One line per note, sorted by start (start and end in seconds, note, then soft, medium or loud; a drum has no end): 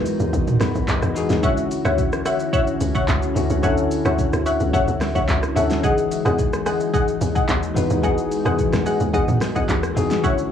0.00 0.19 E2 loud
0.00 1.14 E3 loud
0.00 1.39 E3 medium
0.00 1.39 G#3 medium
0.00 1.15 D#4 medium
0.00 1.39 D#4 medium
0.00 1.16 F#4 medium
0.00 5.80 F#4 medium
0.00 0.12 A#4 loud
0.00 1.46 B4 loud
0.06 open hi-hat medium
0.06 shaker medium
0.20 0.33 D#2 medium
0.20 shaker medium
0.33 0.47 E2 loud
0.33 kick loud
0.33 shaker medium
0.47 mid tom medium
0.47 shaker soft
0.60 0.74 E2 medium
0.60 0.86 B5 medium
0.60 cross-stick loud
0.60 snare medium
0.60 open hi-hat medium
0.60 shaker medium
0.75 0.88 E2 medium
0.75 kick medium
0.75 shaker medium
0.88 1.02 D#2 loud
0.88 1.39 D#5 medium
0.88 kick loud
0.88 clap loud
0.88 shaker medium
1.02 1.15 E2 medium
1.02 cross-stick medium
1.02 shaker soft
1.14 1.37 E3 medium
1.14 1.38 D#4 medium
1.14 1.38 F#4 medium
1.14 1.39 G#4 loud
1.14 open hi-hat medium
1.14 shaker loud
1.30 1.43 D#2 medium
1.30 snare medium
1.30 shaker medium
1.42 2.31 D3 medium
1.42 5.80 D3 medium
1.42 2.31 C#4 medium
1.42 5.80 C#4 medium
1.42 5.80 E4 medium
1.42 2.32 E4 medium
1.42 2.32 F#4 loud
1.42 1.54 C#5 medium
1.42 1.55 E5 medium
1.42 1.55 F#5 loud
1.42 kick loud
1.42 shaker medium
1.57 shaker medium
1.71 open hi-hat medium
1.71 shaker medium
1.85 2.24 D2 loud
1.85 1.95 C#5 medium
1.85 1.96 E5 medium
1.85 1.96 F#5 medium
1.85 cross-stick loud
1.85 shaker soft
1.98 kick loud
1.98 shaker medium
2.13 cross-stick loud
2.13 shaker medium
2.25 2.37 C#5 medium
2.25 2.37 E5 medium
2.25 2.37 F#5 medium
2.25 cross-stick loud
2.25 open hi-hat medium
2.25 shaker medium
2.40 shaker medium
2.53 2.65 C#5 medium
2.53 2.65 E5 medium
2.53 2.65 F#5 loud
2.53 kick loud
2.53 shaker medium
2.68 shaker medium
2.81 3.07 C#2 medium
2.81 open hi-hat medium
2.81 shaker medium
2.95 3.05 C#5 medium
2.95 3.06 E5 medium
2.95 3.06 F#5 medium
2.95 kick loud
2.95 shaker medium
3.08 3.35 C#2 loud
3.08 kick loud
3.08 clap medium
3.08 shaker medium
3.23 shaker medium
3.34 3.50 D2 medium
3.34 3.57 D3 medium
3.34 3.58 C#4 medium
3.34 3.58 E4 medium
3.34 3.59 F#4 loud
3.34 open hi-hat medium
3.34 shaker medium
3.50 3.63 C#2 medium
3.50 shaker medium
3.62 4.04 D2 loud
3.62 4.51 D3 medium
3.62 4.51 C#4 medium
3.62 4.52 E4 medium
3.62 4.53 A4 loud
3.62 3.75 C#5 medium
3.62 3.75 E5 medium
3.62 3.75 F#5 loud
3.62 kick loud
3.62 shaker medium
3.78 shaker medium
3.91 open hi-hat medium
3.91 shaker medium
4.05 4.32 D2 loud
4.05 4.16 C#5 medium
4.05 4.16 E5 medium
4.05 4.16 F#5 medium
4.05 cross-stick loud
4.05 shaker soft
4.18 kick loud
4.18 shaker medium
4.33 4.59 D2 medium
4.33 cross-stick loud
4.33 shaker medium
4.46 4.57 C#5 medium
4.46 4.57 E5 medium
4.46 4.58 F#5 medium
4.46 open hi-hat medium
4.46 shaker medium
4.60 4.73 C#2 medium
4.60 shaker medium
4.73 4.87 D2 loud
4.73 4.85 C#5 medium
4.73 4.85 E5 medium
4.73 4.85 F#5 loud
4.73 kick loud
4.73 shaker medium
4.88 5.14 D2 loud
4.88 shaker medium
5.01 cross-stick loud
5.01 snare medium
5.01 open hi-hat soft
5.01 shaker medium
5.15 5.28 D2 medium
5.15 5.26 C#5 medium
5.15 5.26 E5 medium
5.15 5.26 F#5 medium
5.15 kick loud
5.15 shaker medium
5.29 5.55 C#2 medium
5.29 kick loud
5.29 clap loud
5.29 shaker medium
5.43 cross-stick loud
5.43 shaker medium
5.55 5.83 D2 loud
5.55 5.78 D3 loud
5.55 5.78 C#4 medium
5.55 5.79 E4 medium
5.55 5.79 A4 loud
5.55 5.67 C#5 medium
5.55 5.67 E5 medium
5.55 5.68 F#5 medium
5.55 open hi-hat medium
5.55 shaker medium
5.70 snare medium
5.70 shaker medium
5.82 6.71 E3 medium
5.82 10.20 E3 medium
5.82 10.20 G#3 medium
5.82 6.72 D#4 medium
5.82 10.20 D#4 medium
5.82 10.52 F#4 loud
5.82 6.72 F#4 medium
5.82 5.95 G#4 loud
5.82 6.73 G#4 loud
5.82 5.95 D#5 medium
5.82 5.95 F#5 loud
5.82 kick loud
5.82 shaker medium
5.98 shaker medium
6.11 open hi-hat medium
6.11 shaker medium
6.25 6.65 E2 loud
6.25 6.36 G#4 medium
6.25 6.36 D#5 medium
6.25 6.36 F#5 medium
6.25 cross-stick loud
6.25 shaker soft
6.39 kick loud
6.39 shaker medium
6.53 cross-stick loud
6.53 shaker medium
6.66 6.77 G#4 medium
6.66 6.78 D#5 medium
6.66 6.78 F#5 medium
6.66 cross-stick loud
6.66 open hi-hat medium
6.66 shaker medium
6.80 shaker medium
6.93 7.05 G#4 medium
6.93 7.05 D#5 medium
6.93 7.05 F#5 loud
6.93 kick loud
6.93 shaker medium
7.08 shaker medium
7.21 7.48 D#2 medium
7.21 open hi-hat medium
7.21 shaker medium
7.35 7.46 G#4 medium
7.35 7.46 D#5 medium
7.35 7.46 F#5 medium
7.35 kick medium
7.35 shaker medium
7.49 7.75 D#2 loud
7.49 kick medium
7.49 clap medium
7.49 shaker medium
7.63 shaker medium
7.75 7.90 E2 medium
7.75 7.98 E3 loud
7.75 7.98 D#4 medium
7.75 7.99 F#4 medium
7.75 7.99 B4 loud
7.75 open hi-hat medium
7.75 shaker medium
7.90 8.03 D#2 medium
7.90 shaker medium
8.02 8.44 E2 loud
8.02 8.91 E3 medium
8.02 8.92 D#4 medium
8.02 8.92 F#4 medium
8.02 8.15 G#4 medium
8.02 8.93 G#4 loud
8.02 8.15 D#5 medium
8.02 8.15 F#5 loud
8.02 kick loud
8.02 shaker medium
8.18 shaker medium
8.32 open hi-hat medium
8.32 shaker medium
8.45 8.72 E2 medium
8.45 8.56 G#4 medium
8.45 8.56 D#5 medium
8.45 8.56 F#5 medium
8.45 cross-stick loud
8.45 shaker soft
8.59 kick loud
8.59 shaker medium
8.73 9.00 E2 loud
8.73 cross-stick loud
8.73 snare medium
8.73 shaker medium
8.86 8.98 G#4 medium
8.86 8.98 D#5 medium
8.86 8.98 F#5 medium
8.86 open hi-hat medium
8.86 shaker medium
9.00 9.13 D#2 medium
9.00 shaker medium
9.14 9.28 E2 medium
9.14 9.25 G#4 medium
9.14 9.25 D#5 medium
9.14 9.25 F#5 loud
9.14 kick loud
9.14 shaker medium
9.28 9.55 E2 medium
9.28 mid tom medium
9.28 shaker medium
9.41 cross-stick loud
9.41 snare medium
9.41 open hi-hat medium
9.41 shaker medium
9.55 9.68 E2 medium
9.55 9.66 G#4 medium
9.55 9.66 D#5 medium
9.55 9.66 F#5 medium
9.55 kick medium
9.55 shaker medium
9.69 9.95 D#2 loud
9.69 kick medium
9.69 clap loud
9.69 shaker medium
9.83 cross-stick loud
9.83 shaker medium
9.95 10.23 E2 medium
9.95 10.18 E3 medium
9.95 10.18 D#4 medium
9.95 10.19 F#4 medium
9.95 10.19 G#4 loud
9.95 open hi-hat medium
9.95 shaker medium
10.10 snare medium
10.10 shaker medium
10.22 10.52 D3 medium
10.22 10.52 C#4 medium
10.22 10.52 E4 medium
10.22 10.52 F#4 loud
10.22 10.35 C#5 medium
10.22 10.35 E5 medium
10.22 10.35 F#5 loud
10.22 kick loud
10.22 shaker medium
10.38 shaker medium